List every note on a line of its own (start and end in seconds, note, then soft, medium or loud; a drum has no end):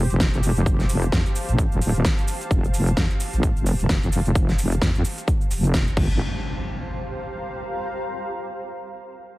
0.00 5.96 G4 medium
0.00 5.97 C5 medium
0.00 5.97 F5 medium
0.00 5.97 A5 medium
0.10 0.18 F1 medium
0.10 closed hi-hat medium
0.10 shaker soft
0.20 0.65 F1 medium
0.20 kick loud
0.20 snare loud
0.20 closed hi-hat medium
0.20 shaker soft
0.34 shaker soft
0.43 open hi-hat medium
0.43 shaker medium
0.56 closed hi-hat medium
0.56 shaker soft
0.66 1.11 F1 loud
0.66 kick loud
0.66 closed hi-hat medium
0.66 shaker soft
0.80 snare soft
0.80 shaker soft
0.89 open hi-hat loud
0.89 shaker medium
1.03 closed hi-hat medium
1.03 shaker soft
1.12 1.23 F2 loud
1.12 kick loud
1.12 snare loud
1.12 closed hi-hat medium
1.12 shaker soft
1.26 shaker soft
1.35 open hi-hat medium
1.35 shaker medium
1.49 1.70 A1 loud
1.49 closed hi-hat medium
1.49 shaker soft
1.58 kick loud
1.58 closed hi-hat medium
1.58 shaker soft
1.72 2.03 D#1 loud
1.72 shaker soft
1.82 open hi-hat loud
1.82 shaker medium
1.95 closed hi-hat medium
1.95 shaker soft
2.05 kick loud
2.05 snare loud
2.05 closed hi-hat medium
2.05 shaker soft
2.18 shaker soft
2.28 open hi-hat medium
2.28 shaker medium
2.41 closed hi-hat medium
2.41 shaker soft
2.51 2.95 F1 loud
2.51 kick loud
2.51 closed hi-hat medium
2.51 shaker soft
2.64 shaker soft
2.74 open hi-hat loud
2.74 shaker medium
2.87 closed hi-hat medium
2.87 shaker soft
2.97 3.08 F2 medium
2.97 kick loud
2.97 snare loud
2.97 closed hi-hat medium
2.97 shaker soft
3.10 shaker soft
3.20 open hi-hat medium
3.20 shaker medium
3.33 3.54 A1 medium
3.33 closed hi-hat medium
3.33 shaker soft
3.43 kick loud
3.43 closed hi-hat medium
3.43 shaker soft
3.56 3.77 F1 loud
3.56 shaker soft
3.66 open hi-hat loud
3.66 shaker medium
3.79 3.88 F1 medium
3.79 closed hi-hat medium
3.79 shaker soft
3.89 4.34 F1 medium
3.89 kick loud
3.89 snare loud
3.89 closed hi-hat medium
3.89 shaker soft
4.03 shaker soft
4.12 open hi-hat medium
4.12 shaker medium
4.26 closed hi-hat medium
4.26 shaker soft
4.35 4.80 F1 loud
4.35 kick loud
4.35 closed hi-hat medium
4.35 shaker soft
4.49 snare soft
4.49 shaker soft
4.58 open hi-hat loud
4.58 shaker medium
4.72 closed hi-hat medium
4.72 shaker soft
4.82 4.93 F2 loud
4.82 kick loud
4.82 snare loud
4.82 closed hi-hat medium
4.82 shaker soft
4.95 5.03 F2 loud
4.95 shaker soft
5.05 open hi-hat medium
5.05 shaker medium
5.18 closed hi-hat medium
5.18 shaker soft
5.28 kick loud
5.28 closed hi-hat medium
5.28 shaker soft
5.41 shaker soft
5.51 5.95 F1 loud
5.51 open hi-hat loud
5.51 shaker medium
5.64 closed hi-hat medium
5.64 shaker soft
5.74 kick loud
5.74 snare loud
5.74 closed hi-hat medium
5.74 shaker soft
5.87 shaker soft
5.97 6.18 G1 loud
5.97 7.78 G4 medium
5.97 kick loud
5.97 crash medium
5.97 impact medium
6.05 7.78 C5 medium
6.35 8.01 F5 medium
6.41 8.01 A#5 medium